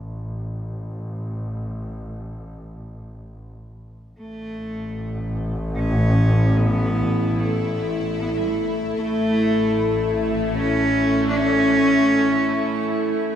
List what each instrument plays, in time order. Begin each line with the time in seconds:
Already playing: double bass section A1
4.17 double bass section A1, synth drone A3 E4, cello A3
5.76 cello C#4
6.57 cello B3
7.39 cello A3
8.21 cello B3
8.29 cello A3
8.39 cello G3
8.48 cello A3
8.95 double bass section A1, cello A3
10.57 cello C#4
11.29 cello D4
11.36 cello C#4